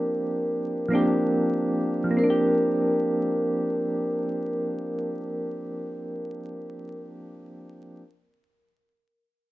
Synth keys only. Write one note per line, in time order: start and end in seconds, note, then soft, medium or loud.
0.00 0.89 F3 medium
0.00 0.90 A#3 medium
0.00 0.92 C4 medium
0.00 0.94 D4 medium
0.00 0.95 G4 medium
0.89 1.99 F3 medium
0.89 1.99 A#3 medium
0.89 2.00 C4 medium
0.94 2.01 D4 medium
0.94 2.02 G4 medium
2.04 6.88 F3 medium
2.11 6.93 A#3 medium
2.17 6.96 C4 medium
2.23 6.99 D4 medium
2.30 7.02 G4 medium